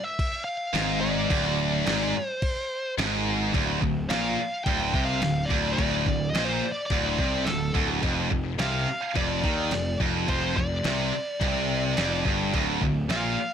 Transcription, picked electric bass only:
0, 0, Header, 1, 2, 480
1, 0, Start_track
1, 0, Tempo, 561272
1, 1116, Time_signature, 4, 2, 24, 8
1, 11576, End_track
2, 0, Start_track
2, 0, Title_t, "Picked electric bass"
2, 0, Program_c, 0, 34
2, 633, Note_on_c, 0, 32, 98
2, 1079, Note_off_c, 0, 32, 0
2, 1114, Note_on_c, 0, 26, 90
2, 1559, Note_off_c, 0, 26, 0
2, 1595, Note_on_c, 0, 32, 90
2, 1816, Note_off_c, 0, 32, 0
2, 2551, Note_on_c, 0, 32, 92
2, 2995, Note_off_c, 0, 32, 0
2, 3027, Note_on_c, 0, 26, 86
2, 3250, Note_off_c, 0, 26, 0
2, 3266, Note_on_c, 0, 26, 71
2, 3490, Note_off_c, 0, 26, 0
2, 3499, Note_on_c, 0, 34, 91
2, 3725, Note_off_c, 0, 34, 0
2, 3987, Note_on_c, 0, 26, 90
2, 4210, Note_off_c, 0, 26, 0
2, 4222, Note_on_c, 0, 36, 92
2, 4447, Note_off_c, 0, 36, 0
2, 4462, Note_on_c, 0, 26, 76
2, 4687, Note_off_c, 0, 26, 0
2, 4707, Note_on_c, 0, 26, 85
2, 4930, Note_off_c, 0, 26, 0
2, 4945, Note_on_c, 0, 26, 89
2, 5169, Note_off_c, 0, 26, 0
2, 5185, Note_on_c, 0, 26, 78
2, 5409, Note_off_c, 0, 26, 0
2, 5423, Note_on_c, 0, 34, 99
2, 5649, Note_off_c, 0, 34, 0
2, 5904, Note_on_c, 0, 26, 90
2, 6129, Note_off_c, 0, 26, 0
2, 6147, Note_on_c, 0, 36, 88
2, 6371, Note_off_c, 0, 36, 0
2, 6382, Note_on_c, 0, 26, 74
2, 6609, Note_off_c, 0, 26, 0
2, 6626, Note_on_c, 0, 26, 87
2, 6851, Note_off_c, 0, 26, 0
2, 6867, Note_on_c, 0, 29, 97
2, 7092, Note_off_c, 0, 29, 0
2, 7110, Note_on_c, 0, 29, 84
2, 7334, Note_off_c, 0, 29, 0
2, 7343, Note_on_c, 0, 36, 96
2, 7570, Note_off_c, 0, 36, 0
2, 7831, Note_on_c, 0, 29, 90
2, 8055, Note_off_c, 0, 29, 0
2, 8072, Note_on_c, 0, 39, 88
2, 8296, Note_off_c, 0, 39, 0
2, 8306, Note_on_c, 0, 29, 72
2, 8533, Note_off_c, 0, 29, 0
2, 8551, Note_on_c, 0, 29, 86
2, 8775, Note_off_c, 0, 29, 0
2, 8794, Note_on_c, 0, 29, 90
2, 9017, Note_off_c, 0, 29, 0
2, 9035, Note_on_c, 0, 29, 79
2, 9258, Note_off_c, 0, 29, 0
2, 9277, Note_on_c, 0, 36, 88
2, 9499, Note_off_c, 0, 36, 0
2, 9757, Note_on_c, 0, 36, 89
2, 10203, Note_off_c, 0, 36, 0
2, 10242, Note_on_c, 0, 29, 87
2, 10463, Note_off_c, 0, 29, 0
2, 10479, Note_on_c, 0, 31, 81
2, 10701, Note_off_c, 0, 31, 0
2, 10722, Note_on_c, 0, 26, 85
2, 10943, Note_off_c, 0, 26, 0
2, 10963, Note_on_c, 0, 26, 73
2, 11183, Note_off_c, 0, 26, 0
2, 11200, Note_on_c, 0, 34, 87
2, 11422, Note_off_c, 0, 34, 0
2, 11576, End_track
0, 0, End_of_file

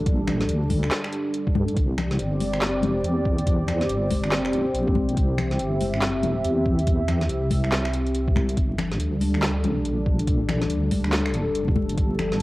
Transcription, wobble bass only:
0, 0, Header, 1, 2, 480
1, 0, Start_track
1, 0, Tempo, 425532
1, 70, Time_signature, 4, 2, 24, 8
1, 14012, End_track
2, 0, Start_track
2, 0, Title_t, "Wobble bass"
2, 0, Program_c, 0, 39
2, 0, Note_on_c, 0, 34, 103
2, 535, Note_off_c, 0, 34, 0
2, 551, Note_on_c, 0, 38, 96
2, 1015, Note_off_c, 0, 38, 0
2, 1750, Note_on_c, 0, 43, 101
2, 1975, Note_off_c, 0, 43, 0
2, 1991, Note_on_c, 0, 36, 93
2, 2455, Note_off_c, 0, 36, 0
2, 2470, Note_on_c, 0, 31, 96
2, 3136, Note_off_c, 0, 31, 0
2, 3136, Note_on_c, 0, 30, 96
2, 3415, Note_off_c, 0, 30, 0
2, 3429, Note_on_c, 0, 40, 98
2, 4374, Note_off_c, 0, 40, 0
2, 4389, Note_on_c, 0, 31, 94
2, 5334, Note_off_c, 0, 31, 0
2, 5350, Note_on_c, 0, 34, 103
2, 5815, Note_off_c, 0, 34, 0
2, 5831, Note_on_c, 0, 36, 93
2, 6295, Note_off_c, 0, 36, 0
2, 6312, Note_on_c, 0, 31, 99
2, 7256, Note_off_c, 0, 31, 0
2, 7270, Note_on_c, 0, 40, 100
2, 8215, Note_off_c, 0, 40, 0
2, 8230, Note_on_c, 0, 36, 95
2, 9655, Note_off_c, 0, 36, 0
2, 9669, Note_on_c, 0, 31, 91
2, 10134, Note_off_c, 0, 31, 0
2, 10147, Note_on_c, 0, 38, 97
2, 10813, Note_off_c, 0, 38, 0
2, 10813, Note_on_c, 0, 37, 97
2, 11094, Note_off_c, 0, 37, 0
2, 11109, Note_on_c, 0, 34, 98
2, 12054, Note_off_c, 0, 34, 0
2, 12068, Note_on_c, 0, 38, 97
2, 13014, Note_off_c, 0, 38, 0
2, 13029, Note_on_c, 0, 29, 101
2, 13494, Note_off_c, 0, 29, 0
2, 13509, Note_on_c, 0, 31, 87
2, 13974, Note_off_c, 0, 31, 0
2, 14012, End_track
0, 0, End_of_file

